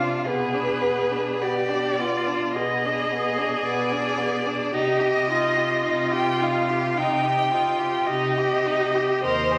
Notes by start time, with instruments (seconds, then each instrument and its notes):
Already playing: cello C3, viola F4, violin F5
0.00 violin D4
0.27 cello B2, violin B3 B4, viola G#4
0.55 violin D4
0.82 violin B3
1.11 violin D4
1.41 cello B2, violin B3 D5, viola G4
1.69 violin D4
1.99 violin B3, viola F4
2.28 violin D4
2.55 cello B2, violin B3 D#5, viola G#4
2.85 violin D4
3.12 violin B3
3.38 violin D4
3.64 cello B2, violin B3 D5
3.92 violin D4
4.18 violin B3
4.46 violin D4
4.73 cello C3, violin D#4 D#5, viola G4
5.00 violin G4
5.30 violin D#4, viola F4
5.57 violin G4
5.84 cello C3, violin D#4
6.12 violin G4 G5
6.42 violin D#4 F5
6.69 violin G4
6.97 cello C3, violin D#4 G5, viola D#4
7.23 violin G4
7.52 violin D#4, viola F4
7.80 violin G4
8.07 cello C3, violin D#4 D#5, viola G4
8.38 violin G4
8.66 violin D#4
8.95 violin G4
9.21 cello D#2, violin A#4 D#5, viola C5
9.52 violin G4